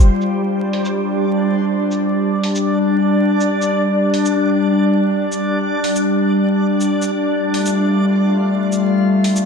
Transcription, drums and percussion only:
0.00 shaker medium
0.21 shaker soft
0.73 open hi-hat medium
0.85 shaker medium
1.91 shaker soft
2.43 open hi-hat medium
2.55 shaker medium
3.41 shaker medium
3.62 shaker soft
4.14 open hi-hat medium
4.26 shaker medium
5.32 shaker soft
5.84 open hi-hat medium
5.96 shaker medium
6.81 shaker soft
7.02 shaker soft
7.54 open hi-hat medium
7.66 shaker medium
8.72 shaker medium
9.24 open hi-hat medium
9.36 shaker medium

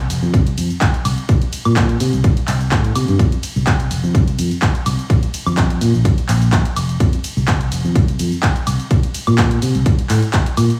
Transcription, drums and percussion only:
0.10 open hi-hat loud
0.10 ride medium
0.10 cabasa medium
0.23 cabasa soft
0.34 kick loud
0.34 closed hi-hat medium
0.34 cabasa soft
0.47 closed hi-hat medium
0.47 cabasa soft
0.58 open hi-hat loud
0.58 ride medium
0.58 cabasa medium
0.70 closed hi-hat soft
0.70 cabasa soft
0.81 kick loud
0.81 clap loud
0.81 closed hi-hat medium
0.81 cabasa soft
0.94 closed hi-hat soft
0.94 cabasa soft
1.05 open hi-hat loud
1.05 ride medium
1.05 cabasa medium
1.05 high woodblock medium
1.18 closed hi-hat soft
1.18 cabasa soft
1.29 kick loud
1.29 closed hi-hat medium
1.29 cabasa soft
1.42 closed hi-hat medium
1.42 cabasa soft
1.53 open hi-hat loud
1.53 ride medium
1.53 cabasa medium
1.65 closed hi-hat soft
1.65 cabasa soft
1.65 high woodblock medium
1.76 kick loud
1.76 clap loud
1.76 closed hi-hat medium
1.76 cabasa soft
1.89 closed hi-hat soft
1.89 cabasa soft
2.00 open hi-hat loud
2.00 ride medium
2.00 cabasa medium
2.13 closed hi-hat soft
2.13 cabasa soft
2.24 kick loud
2.24 closed hi-hat medium
2.24 cabasa soft
2.37 closed hi-hat medium
2.37 cabasa soft
2.48 clap medium
2.48 open hi-hat loud
2.48 ride medium
2.48 cabasa medium
2.61 closed hi-hat soft
2.61 cabasa soft
2.71 kick loud
2.71 clap loud
2.71 closed hi-hat medium
2.71 cabasa soft
2.84 closed hi-hat soft
2.84 cabasa soft
2.95 open hi-hat loud
2.95 ride medium
2.95 cabasa medium
2.95 high woodblock medium
3.08 closed hi-hat soft
3.08 cabasa soft
3.19 kick loud
3.19 closed hi-hat medium
3.19 cabasa soft
3.32 closed hi-hat medium
3.32 cabasa soft
3.43 open hi-hat loud
3.43 ride medium
3.43 cabasa medium
3.56 cabasa soft
3.67 kick loud
3.67 clap loud
3.67 closed hi-hat medium
3.67 cabasa soft
3.80 closed hi-hat medium
3.80 cabasa soft
3.91 open hi-hat medium
3.91 ride medium
3.91 cabasa medium
4.04 cabasa soft
4.15 kick loud
4.15 closed hi-hat medium
4.15 cabasa soft
4.28 closed hi-hat medium
4.28 cabasa soft
4.39 open hi-hat loud
4.39 ride medium
4.39 cabasa medium
4.51 closed hi-hat soft
4.51 cabasa soft
4.62 kick loud
4.62 clap loud
4.62 closed hi-hat medium
4.62 cabasa soft
4.75 closed hi-hat medium
4.75 cabasa soft
4.86 open hi-hat medium
4.86 ride medium
4.86 cabasa medium
4.86 high woodblock medium
4.99 closed hi-hat soft
4.99 cabasa soft
5.10 kick loud
5.10 closed hi-hat medium
5.10 cabasa soft
5.23 closed hi-hat medium
5.23 cabasa soft
5.34 open hi-hat loud
5.34 ride medium
5.34 cabasa medium
5.46 cabasa soft
5.46 high woodblock medium
5.57 kick loud
5.57 clap loud
5.57 closed hi-hat medium
5.57 cabasa soft
5.70 closed hi-hat medium
5.70 cabasa soft
5.81 open hi-hat medium
5.81 ride medium
5.81 cabasa medium
5.94 cabasa soft
6.05 kick loud
6.05 closed hi-hat medium
6.05 cabasa soft
6.18 closed hi-hat medium
6.18 cabasa soft
6.29 clap medium
6.29 open hi-hat loud
6.29 ride medium
6.29 cabasa medium
6.42 closed hi-hat soft
6.42 cabasa soft
6.52 kick loud
6.52 clap loud
6.52 closed hi-hat medium
6.52 cabasa soft
6.65 closed hi-hat medium
6.65 cabasa soft
6.76 open hi-hat medium
6.76 ride medium
6.76 cabasa medium
6.76 high woodblock medium
6.89 closed hi-hat soft
6.89 cabasa soft
7.00 kick loud
7.00 closed hi-hat medium
7.00 cabasa soft
7.13 closed hi-hat medium
7.13 cabasa soft
7.24 open hi-hat loud
7.24 ride medium
7.24 cabasa medium
7.37 cabasa soft
7.48 kick loud
7.48 clap loud
7.48 closed hi-hat medium
7.48 cabasa soft
7.61 closed hi-hat medium
7.61 cabasa soft
7.72 open hi-hat medium
7.72 ride medium
7.72 cabasa medium
7.85 cabasa soft
7.95 kick loud
7.95 closed hi-hat medium
7.95 cabasa soft
8.08 closed hi-hat medium
8.08 cabasa soft
8.19 open hi-hat loud
8.19 ride medium
8.19 cabasa medium
8.32 closed hi-hat soft
8.32 cabasa soft
8.43 kick loud
8.43 clap loud
8.43 closed hi-hat medium
8.43 cabasa soft
8.56 closed hi-hat medium
8.56 cabasa soft
8.67 open hi-hat medium
8.67 ride medium
8.67 cabasa medium
8.67 high woodblock medium
8.80 closed hi-hat soft
8.80 cabasa soft
8.91 kick loud
8.91 closed hi-hat medium
8.91 cabasa soft
9.03 closed hi-hat medium
9.03 cabasa soft
9.14 open hi-hat loud
9.14 ride medium
9.14 cabasa medium
9.27 closed hi-hat soft
9.27 cabasa soft
9.27 high woodblock medium
9.38 kick loud
9.38 clap loud
9.38 closed hi-hat medium
9.38 cabasa soft
9.51 closed hi-hat medium
9.51 cabasa soft
9.62 open hi-hat medium
9.62 ride medium
9.62 cabasa medium
9.75 closed hi-hat soft
9.75 cabasa soft
9.86 kick loud
9.86 closed hi-hat medium
9.86 cabasa soft
9.99 closed hi-hat medium
9.99 cabasa soft
10.09 clap medium
10.09 open hi-hat loud
10.09 ride medium
10.09 cabasa medium
10.22 closed hi-hat soft
10.22 cabasa soft
10.33 kick loud
10.33 clap loud
10.33 closed hi-hat medium
10.33 cabasa soft
10.46 closed hi-hat medium
10.46 cabasa soft
10.57 open hi-hat medium
10.57 ride medium
10.57 cabasa medium
10.57 high woodblock medium
10.70 closed hi-hat soft
10.70 cabasa soft

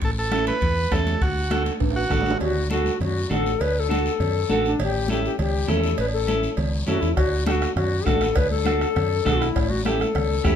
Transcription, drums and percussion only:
0.01 bombo low medium
0.01 high timbale medium
0.01 long guiro medium
0.17 high conga soft
0.32 bombo rim medium
0.32 high conga medium
0.32 high timbale medium
0.32 short guiro medium
0.46 high conga medium
0.46 high timbale medium
0.46 short guiro medium
0.61 bombo low medium
0.61 high conga soft
0.61 high timbale medium
0.61 long guiro medium
0.92 bombo low medium
0.92 bombo rim medium
0.92 high conga medium
0.92 high timbale medium
0.92 low timbale medium
0.92 short guiro medium
1.07 high conga medium
1.07 high timbale medium
1.07 short guiro medium
1.21 bombo low medium
1.21 high timbale medium
1.21 long guiro medium
1.37 high conga soft
1.50 bombo rim medium
1.50 high conga loud
1.50 high timbale medium
1.50 short guiro medium
1.65 high conga medium
1.65 high timbale medium
1.65 short guiro medium
1.80 bombo low medium
1.80 high conga soft
1.80 high timbale medium
1.80 long guiro medium
1.90 high timbale medium
2.10 bombo low medium
2.10 bombo rim medium
2.10 high conga medium
2.10 low conga medium
2.10 short guiro medium
2.21 low timbale medium
2.25 high conga medium
2.25 short guiro medium
2.30 low timbale medium
2.40 cowbell loud
2.40 high conga soft
2.40 low conga medium
2.40 long guiro medium
2.70 high conga loud
2.70 short guiro medium
2.85 high conga medium
2.85 short guiro medium
3.01 cowbell medium
3.01 high conga soft
3.01 low conga medium
3.01 long guiro medium
3.31 high conga medium
3.31 low conga medium
3.31 low timbale medium
3.31 short guiro medium
3.46 short guiro medium
3.61 cowbell loud
3.61 high conga soft
3.61 long guiro medium
3.91 high conga loud
3.91 short guiro medium
4.06 short guiro medium
4.20 cowbell medium
4.20 high conga soft
4.20 low conga medium
4.20 long guiro medium
4.49 high conga medium
4.49 short guiro medium
4.65 short guiro medium
4.79 cowbell loud
4.79 high conga soft
4.79 low conga medium
4.79 long guiro medium
5.08 high conga loud
5.08 short guiro medium
5.25 short guiro medium
5.39 cowbell medium
5.39 high conga soft
5.39 low conga medium
5.39 long guiro medium
5.68 high conga medium
5.68 low conga medium
5.68 low timbale medium
5.68 short guiro medium
5.84 short guiro medium
5.98 cowbell loud
5.98 high conga soft
5.98 long guiro medium
6.28 high conga medium
6.28 short guiro medium
6.43 short guiro medium
6.57 cowbell medium
6.57 high conga soft
6.57 low conga medium
6.57 long guiro medium
6.87 high conga medium
6.87 low conga medium
6.87 low timbale medium
6.87 short guiro medium
7.02 short guiro medium
7.16 bombo low medium
7.16 bombo rim medium
7.16 cowbell loud
7.16 high conga soft
7.16 long guiro medium
7.46 bombo rim medium
7.46 high conga loud
7.46 short guiro medium
7.62 bombo rim medium
7.62 short guiro medium
7.77 bombo rim medium
7.77 cowbell medium
7.77 high conga soft
7.77 low conga medium
7.77 long guiro medium
8.06 bombo low medium
8.06 bombo rim medium
8.06 high conga medium
8.06 low conga medium
8.06 low timbale medium
8.06 short guiro medium
8.21 bombo rim medium
8.21 short guiro medium
8.35 bombo low medium
8.35 bombo rim medium
8.35 cowbell loud
8.35 high conga soft
8.35 long guiro medium
8.51 high conga medium
8.66 bombo rim medium
8.66 high conga loud
8.66 short guiro medium
8.81 bombo rim medium
8.81 short guiro medium
8.96 bombo rim medium
8.96 cowbell medium
8.96 high conga soft
8.96 low conga medium
8.96 long guiro medium
9.26 bombo low medium
9.26 bombo rim medium
9.26 high conga medium
9.26 low conga medium
9.26 short guiro medium
9.42 bombo rim medium
9.42 short guiro medium
9.56 bombo low medium
9.56 bombo rim medium
9.56 cowbell loud
9.56 high conga soft
9.56 long guiro medium
9.70 high conga medium
9.85 bombo rim medium
9.85 high conga loud
9.85 short guiro medium
10.00 bombo rim medium
10.00 high conga medium
10.00 short guiro medium
10.15 bombo rim medium
10.15 cowbell medium
10.15 high conga soft
10.15 low conga medium
10.15 long guiro medium
10.45 bombo low medium
10.45 bombo rim medium
10.45 high conga medium
10.45 short guiro medium

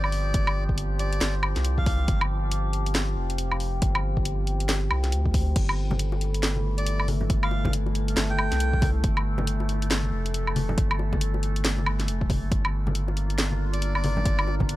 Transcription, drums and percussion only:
0.04 low woodblock medium
0.12 open hi-hat medium
0.34 kick loud
0.34 closed hi-hat medium
0.47 low woodblock medium
0.69 kick medium
0.78 closed hi-hat medium
0.99 closed hi-hat medium
1.13 closed hi-hat medium
1.21 snare loud
1.21 closed hi-hat medium
1.43 low woodblock medium
1.56 snare soft
1.56 closed hi-hat medium
1.65 closed hi-hat medium
1.78 kick medium
1.86 kick loud
1.86 open hi-hat medium
2.08 kick loud
2.08 closed hi-hat medium
2.21 low woodblock medium
2.51 closed hi-hat medium
2.73 closed hi-hat medium
2.86 closed hi-hat medium
2.95 snare loud
2.95 closed hi-hat medium
3.30 closed hi-hat medium
3.38 closed hi-hat medium
3.52 low woodblock medium
3.60 open hi-hat medium
3.82 kick loud
3.82 closed hi-hat medium
3.95 low woodblock medium
4.17 kick medium
4.25 closed hi-hat medium
4.47 closed hi-hat medium
4.60 closed hi-hat medium
4.69 snare loud
4.69 closed hi-hat medium
4.91 low woodblock medium
5.04 snare soft
5.04 closed hi-hat medium
5.12 closed hi-hat medium
5.26 kick medium
5.34 kick loud
5.34 open hi-hat loud
5.56 kick loud
5.56 closed hi-hat medium
5.56 crash medium
5.69 low woodblock medium
5.91 high conga medium
5.91 low conga medium
5.99 closed hi-hat medium
6.12 high bongo medium
6.21 closed hi-hat medium
6.34 closed hi-hat medium
6.43 snare loud
6.43 closed hi-hat medium
6.56 high conga medium
6.78 closed hi-hat medium
6.86 closed hi-hat medium
7.00 low woodblock medium
7.08 open hi-hat medium
7.08 high conga loud
7.21 low conga medium
7.30 kick loud
7.30 closed hi-hat medium
7.43 low woodblock medium
7.51 high bongo medium
7.65 kick medium
7.65 high conga loud
7.65 low conga loud
7.73 closed hi-hat medium
7.86 high bongo medium
7.95 closed hi-hat medium
8.08 closed hi-hat medium
8.17 snare loud
8.17 closed hi-hat medium
8.30 high conga medium
8.39 low woodblock medium
8.52 snare soft
8.52 closed hi-hat medium
8.60 closed hi-hat medium
8.73 kick medium
8.82 kick loud
8.82 open hi-hat medium
8.82 high conga loud
9.04 kick loud
9.04 closed hi-hat medium
9.17 low woodblock medium
9.38 high conga medium
9.38 low conga loud
9.47 closed hi-hat medium
9.60 high bongo medium
9.69 closed hi-hat medium
9.82 closed hi-hat medium
9.91 snare loud
9.91 closed hi-hat medium
10.03 high conga medium
10.26 closed hi-hat medium
10.34 closed hi-hat medium
10.47 low woodblock medium
10.56 open hi-hat medium
10.56 high conga loud
10.69 low conga loud
10.78 kick loud
10.78 closed hi-hat medium
10.91 low woodblock medium
10.99 high bongo medium
11.13 kick medium
11.13 high conga loud
11.13 low conga medium
11.21 closed hi-hat medium
11.34 high bongo medium
11.43 closed hi-hat medium
11.56 closed hi-hat medium
11.65 snare loud
11.65 closed hi-hat medium
11.78 high conga medium
11.86 low woodblock medium
12.00 snare soft
12.00 closed hi-hat medium
12.08 closed hi-hat medium
12.21 kick medium
12.30 kick loud
12.30 open hi-hat medium
12.30 high conga loud
12.52 kick loud
12.52 closed hi-hat medium
12.65 low woodblock medium
12.87 high conga medium
12.87 low conga medium
12.95 closed hi-hat medium
13.08 high bongo medium
13.17 closed hi-hat medium
13.30 closed hi-hat medium
13.39 snare loud
13.39 closed hi-hat medium
13.52 high conga medium
13.74 closed hi-hat medium
13.82 closed hi-hat medium
13.95 low woodblock medium
14.04 open hi-hat medium
14.04 high conga loud
14.17 low conga medium
14.25 kick loud
14.25 closed hi-hat medium
14.39 low woodblock medium
14.48 high bongo medium
14.60 kick medium
14.60 high conga medium
14.60 low conga medium
14.69 closed hi-hat medium

